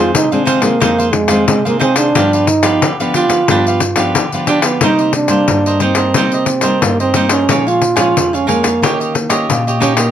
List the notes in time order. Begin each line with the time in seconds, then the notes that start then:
Already playing: F2 D#3 G#3 C4 F4 G#4 C5 F5
0.14 C3 D#4, pandeiro
0.32 D#3 G#3 C4 D4 G#4 C5 F5, pandeiro
0.45 C4 D#4 G#4 C5 F5, pandeiro
0.61 D#3 G#3 A#3 C4 G#4 C5 F5, pandeiro
0.80 F2 D#3 G#3 C4 D#4 G#4 C5 F5, pandeiro
0.98 G#4 C5 F5, pandeiro
1.13 G#3, muted cavaquinho stroke, pandeiro
1.28 D#3 G#3 C4 G#4 C5 F5, pandeiro
1.48 C3 G#3, pandeiro
1.65 D#3 G#3 A#3 C4 G#4 C5 F5, pandeiro
1.79 C4 D#4 G#4 C5 F5, pandeiro
1.96 D4 G#4 C5 F5, pandeiro
2.15 G2 F3 B3 D4 G4 B4 F5, pandeiro
2.33 G4 B4 F5, pandeiro
2.47 D#4, muted cavaquinho stroke, pandeiro
2.62 F3 B3 D4 G4 B4 F5, pandeiro
2.82 D3, pandeiro
3.00 F3 B3 D4 G4 B4 F5, pandeiro
3.14 D4 F4 G4 B4 F5, pandeiro
3.29 F3 B3 D4 G4 B4 F5, pandeiro
3.48 G2 F3 B3 D4 G4 B4 F5, pandeiro
3.67 G4 B4 F5, pandeiro
3.80 muted cavaquinho stroke, pandeiro
3.96 F3 B3 D4 G4 B4 F5, pandeiro
4.15 D3, pandeiro
4.32 F3 B3 D4 G4 B4 F5, pandeiro
4.47 D4 G4 B4 F5, pandeiro
4.62 B3 G4 B4 F5, pandeiro
4.81 C3 G3 A#3 D#4 A#4 C5 D#5, pandeiro
4.99 A#4 C5 D#5, pandeiro
5.13 D4, muted cavaquinho stroke, pandeiro
5.28 G3 A#3 A#4 C5, pandeiro
5.48 G2, pandeiro
5.66 A#4 C5 D#5, pandeiro
5.80 G3 A#3 C4 D#4 A#4 C5 D#5, pandeiro
5.95 A#4 C5 D#5, pandeiro
6.14 C3 G3 A#3 D#4 A#4 C5 D#5, pandeiro
6.32 A#4 C5 D#5, pandeiro
6.46 muted cavaquinho stroke, pandeiro
6.61 G3 A#3 D#4 A#4 C5 D#5, pandeiro
6.82 G2 A#3, pandeiro
7.00 C4 A#4 C5 D#5, pandeiro
7.14 G3 A#3 D#4 A#4 C5 D#5, pandeiro
7.29 C#4 A#4 C5 D#5, pandeiro
7.48 A#2 F3 G#3 C#4 A#4 C#5 F5 G#5, pandeiro
7.67 F4 C#5 F5 G#5, pandeiro
7.82 muted cavaquinho stroke, pandeiro
7.96 F3 G#3 C#4 F4 C#5 F5 G#5, pandeiro
8.16 F2, pandeiro
8.33 C#4 C#5 F5 G#5, pandeiro
8.47 F3 G#3 A#3 C#4 A#4 C#5 F5 G#5, pandeiro
8.63 C#5 F5 G#5, pandeiro
8.82 D#3 A#3 C#4 D#4 G4 C#5 D#5, pandeiro
9.00 G4 C#5 D#5, pandeiro
9.14 muted cavaquinho stroke, pandeiro
9.29 A#3 C#4 G4 C#5 D#5, pandeiro
9.49 A#2, pandeiro
9.67 G4 C#5 D#5, pandeiro
9.80 A#3 C#4 D#4 G4 C#5 D#5, pandeiro
9.96 A#3 G4 C#5 D#5, pandeiro